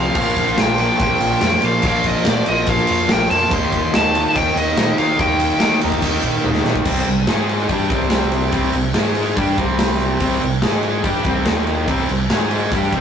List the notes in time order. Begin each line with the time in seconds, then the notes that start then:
Already playing: F2 C3 F3 F5
0.15 A#1 A#2 F3 A#3, kick, crash
0.36 A#1, kick, ride
0.58 A#1 A#2 F3 A#3 G5, snare, ride
0.78 A#2 F3 A#3 G5, ride
0.99 A#1 A#2 F3 A#3 G5, kick, ride
1.20 A#1, ride
1.41 F2 A#2 F3 A#3, snare, ride
1.62 A#2 F3 A#3 F5, ride
1.82 A#1 A#2, kick, ride
1.86 F3 A#3 F5
2.04 D#5, kick, ride
2.25 A#2 F3 A#3, snare, ride
2.30 D5
2.46 A#1 A#2 F3 A#3 D#5, ride
2.67 A#1 A#2 F3 A#3 F5, kick, ride
2.87 F2 F5, ride
3.09 A#1 A#2 F3 A#3 G5, snare, ride
3.30 F2 A#2 F3 A#3 A5, ride
3.51 D#2 D#3 A#3 D#4 C6, kick, ride
3.72 D#2 C6, kick, ride
3.94 D#2 D#3 A#3 D#4 A5, snare, ride
4.14 D#3 A#3 D#4, ride
4.35 D#2 D#3 A#3 D#4 G5, kick, ride
4.56 D#2 D#5, ride
4.77 A#2 D#3 A#3 D#4, snare, ride
4.98 D#3 A#3 D#4 F5, ride
5.19 D#2 D#3 A#3 D#4 G5, kick, ride
5.40 ride
5.60 D#3 A#3 D#4, snare, ride
5.81 D#2 D#3 A#3 D#4, ride
5.92 kick
6.02 D#2 D#3 A#3 D#4, kick, ride
6.22 A#2, kick, ride
6.44 D#2 D#3 A#3 D#4, high tom
6.54 snare
6.65 A#2 D#3 A#3 D#4, snare
6.75 kick
6.85 C2 C3 G3 C4, kick, crash
7.06 C2 C3 G3, crash
7.27 G#2 G#3 D#4 G#4, snare, crash
7.49 crash
7.59 snare
7.69 G2 G3 D4 G4, kick, crash
7.90 C2 C3 G3 C4, kick, crash
8.10 snare, crash
8.32 crash
8.52 C2 C3 G3 C4, kick, crash
8.73 C2 C3 G3, crash
8.94 G#2 G#3 D#4 G#4, snare, crash
9.15 crash
9.36 G2 G3 D4 G4, kick, crash
9.57 C2 C3 G3 C4, kick, crash
9.79 snare, crash
10.00 crash
10.20 C2 C3 G3 C4, kick, crash
10.41 C2 C3 G3, crash
10.62 G#2 G#3 D#4 G#4, snare, crash
10.83 crash
11.04 G2 G3 D4 G4, kick, crash
11.24 C2 C3 G3 C4, kick, crash
11.46 D#2 D#3 A#3 D#4, snare, crash
11.67 crash
11.88 C2 C3 G3 C4, kick, crash
12.09 C2 C3 G3, crash
12.30 G#2 G#3 D#4 G#4, snare, crash
12.51 crash
12.71 G2 G3 D4 G4, kick, crash
12.92 C2 C3 G3 C4, kick, crash